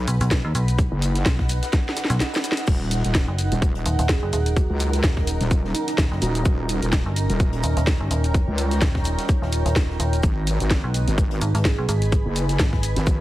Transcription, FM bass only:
0.08 0.19 B1 loud
0.21 0.42 B1 loud
0.45 0.53 D#2 loud
0.55 0.90 B1 loud
1.26 1.61 B1 loud
2.10 2.20 B1 loud
3.28 3.50 F#1 loud
3.86 3.97 D#1 loud
3.99 4.20 D#1 loud
4.23 4.31 F#1 loud
4.33 4.68 D#1 loud
5.04 5.38 D#1 loud
5.98 6.09 D#1 loud
6.12 6.20 F#1 loud
7.06 7.27 G1 loud
7.64 7.75 D#1 medium
7.77 7.98 D#1 loud
8.00 8.09 G1 loud
8.11 8.46 D#1 loud
8.82 9.16 D#1 loud
9.42 9.64 D#1 loud
9.66 9.98 D#1 loud
10.00 10.22 D#1 loud
10.84 11.05 B1 loud
11.41 11.53 G#1 loud
11.55 11.76 G#1 loud
11.78 11.87 B1 loud
11.89 12.23 G#1 loud
12.60 12.94 G#1 loud

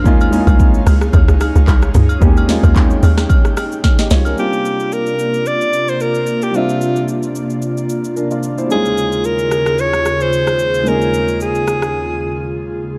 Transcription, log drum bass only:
0.06 0.42 D#2 loud
0.47 0.82 C2 medium
0.87 1.10 C#2 loud
1.14 1.27 D#2 loud
1.29 1.52 C#2 medium
1.56 1.66 C#2 medium
1.68 1.91 C2 medium
1.95 2.18 C#2 medium
2.22 2.58 D#2 loud
2.63 2.98 D#2 medium
3.03 3.27 D#2 medium
4.11 4.35 C2 medium

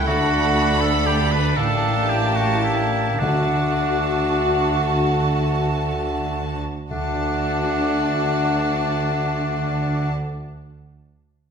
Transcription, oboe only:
0.07 0.83 F#4 medium
0.81 1.08 A4 medium
1.06 1.34 G4 medium
1.32 1.58 B4 medium
1.57 2.11 A4 medium
2.09 2.38 G4 medium
2.36 2.63 F#4 soft
2.64 3.21 E4 medium
3.20 4.97 D4 medium
6.91 10.12 D4 soft

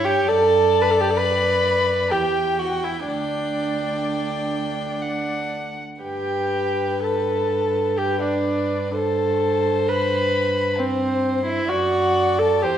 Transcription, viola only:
0.05 0.29 G4 medium
0.28 0.83 A4 medium
0.82 0.92 B4 medium
0.90 1.02 A4 medium
1.00 1.12 G4 medium
1.10 1.18 A4 medium
1.17 2.12 B4 medium
2.11 2.60 G4 medium
2.59 2.85 F#4 medium
2.84 3.06 E4 medium
3.07 5.49 D4 medium
6.04 6.98 G4 medium
7.03 7.99 A4 medium
7.98 8.21 G4 medium
8.22 8.94 D4 medium
8.95 9.90 A4 medium
9.88 10.80 B4 medium
10.79 11.45 C4 medium
11.46 11.70 E4 medium
11.68 12.40 F#4 medium
12.38 12.63 A4 medium
12.62 12.78 G4 medium

